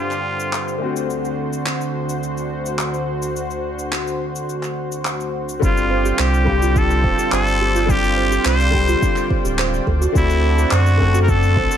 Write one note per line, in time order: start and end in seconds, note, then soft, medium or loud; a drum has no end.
0.00 0.77 G2 medium
0.00 0.76 D3 medium
0.00 5.58 D3 medium
0.00 0.77 G3 medium
0.00 0.78 C4 medium
0.00 0.78 F4 medium
0.00 0.79 F4 medium
0.00 0.79 G4 medium
0.00 5.58 C5 medium
0.11 clap soft
0.11 cabasa soft
0.40 cabasa medium
0.53 clap medium
0.53 cabasa soft
0.68 cabasa soft
0.78 5.58 D2 medium
0.78 5.29 D3 medium
0.78 5.30 A3 medium
0.78 5.31 C4 medium
0.78 5.58 F#4 medium
0.83 5.32 F#4 medium
0.96 cabasa medium
1.10 cabasa soft
1.25 cabasa soft
1.53 cabasa medium
1.66 clap medium
1.66 cabasa soft
1.81 cabasa soft
2.09 cabasa medium
2.23 cabasa soft
2.37 cabasa soft
2.66 cabasa medium
2.79 clap medium
2.79 cabasa soft
2.94 cabasa soft
3.22 cabasa medium
3.36 cabasa medium
3.51 cabasa soft
3.79 cabasa medium
3.92 clap medium
3.92 cabasa soft
4.07 cabasa soft
4.35 cabasa medium
4.49 cabasa soft
4.63 clap soft
4.63 cabasa soft
4.92 cabasa medium
5.05 clap medium
5.05 cabasa soft
5.20 cabasa soft
5.49 cabasa medium
5.59 6.12 G1 medium
5.59 6.42 D3 medium
5.59 6.43 G3 medium
5.59 6.44 C4 medium
5.59 5.75 D4 medium
5.59 9.82 F4 medium
5.59 11.77 C5 medium
5.59 11.77 D5 medium
5.59 9.82 G5 medium
5.59 kick loud
5.59 cabasa medium
5.64 6.45 F4 medium
5.64 6.22 F4 medium
5.77 cabasa soft
5.90 6.03 C5 medium
6.05 6.17 G4 medium
6.05 cabasa medium
6.19 7.06 C2 loud
6.19 6.80 G4 medium
6.19 6.32 C5 medium
6.19 clap loud
6.19 cabasa medium
6.34 cabasa soft
6.44 7.84 D3 medium
6.44 7.85 G3 medium
6.44 7.85 C4 medium
6.44 6.55 G4 medium
6.44 kick medium
6.49 7.86 G4 loud
6.62 6.69 F4 medium
6.62 cabasa medium
6.76 6.89 D4 medium
6.76 7.33 A4 loud
6.76 kick loud
6.76 cabasa medium
6.90 cabasa soft
7.04 7.14 D1 medium
7.04 7.17 C5 medium
7.04 kick loud
7.18 7.31 G4 medium
7.18 cabasa medium
7.32 8.39 G1 medium
7.32 7.92 A4 loud
7.32 7.46 C5 medium
7.32 clap loud
7.32 cabasa soft
7.47 cabasa soft
7.61 7.68 G4 loud
7.75 7.82 F4 medium
7.75 cabasa medium
7.85 8.69 D3 medium
7.85 8.69 G3 medium
7.85 8.70 C4 medium
7.85 8.02 D4 medium
7.85 kick loud
7.89 8.71 F4 medium
7.89 8.46 G4 loud
7.89 cabasa medium
8.04 cabasa soft
8.17 8.30 C5 medium
8.31 8.44 G4 medium
8.31 cabasa medium
8.45 8.95 C2 loud
8.45 8.59 C5 medium
8.45 9.27 C5 loud
8.45 clap loud
8.45 cabasa medium
8.60 cabasa soft
8.70 9.83 D3 medium
8.70 9.84 G3 medium
8.70 9.85 C4 medium
8.70 8.82 G4 medium
8.70 kick medium
8.76 9.86 G4 loud
8.88 8.96 F4 loud
8.88 cabasa medium
9.02 9.15 D4 medium
9.02 kick loud
9.02 cabasa medium
9.16 clap soft
9.16 cabasa soft
9.30 9.43 C5 medium
9.30 kick loud
9.45 9.80 D1 medium
9.45 9.57 G4 medium
9.45 cabasa medium
9.58 9.72 C5 medium
9.58 clap loud
9.58 cabasa medium
9.74 cabasa soft
9.86 10.07 D2 medium
9.86 11.77 F#4 medium
9.86 9.95 A4 medium
9.86 11.77 A5 medium
9.86 kick medium
10.01 10.09 F#4 medium
10.01 cabasa medium
10.12 10.65 D2 loud
10.12 10.95 D3 medium
10.12 10.96 A3 medium
10.12 10.97 C4 medium
10.12 10.28 D4 medium
10.12 kick loud
10.12 cabasa medium
10.17 10.75 E4 medium
10.17 10.98 F#4 medium
10.30 cabasa soft
10.44 10.56 C5 medium
10.58 10.70 A4 medium
10.58 cabasa medium
10.71 11.58 F#2 loud
10.71 11.22 F#4 medium
10.71 10.85 C5 medium
10.71 clap loud
10.71 cabasa medium
10.86 cabasa soft
10.97 11.77 D3 medium
10.97 11.77 A3 medium
10.97 11.77 C4 medium
10.97 11.08 A4 loud
10.97 kick medium
11.02 11.77 A4 loud
11.14 11.22 F#4 medium
11.14 cabasa medium
11.23 11.31 A#4 medium
11.28 11.41 D4 medium
11.28 11.77 A4 loud
11.28 kick loud
11.28 cabasa medium
11.43 cabasa soft
11.56 11.67 A1 medium
11.56 11.69 C5 medium
11.56 kick loud
11.70 11.77 A4 medium
11.70 cabasa medium